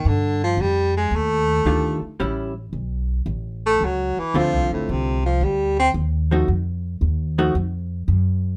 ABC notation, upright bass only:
X:1
M:4/4
L:1/8
Q:"Swing" 1/4=112
K:Eblyd
V:1 name="Upright bass" clef=bass
G,,2 F,,2 E,,2 D,, z | A,,,2 _C,,2 A,,,2 ^C,, z | (3D,, C,, A,,, C,,2 D,,2 E,,2 | F,,2 E,,2 F,,2 _G,,2 |]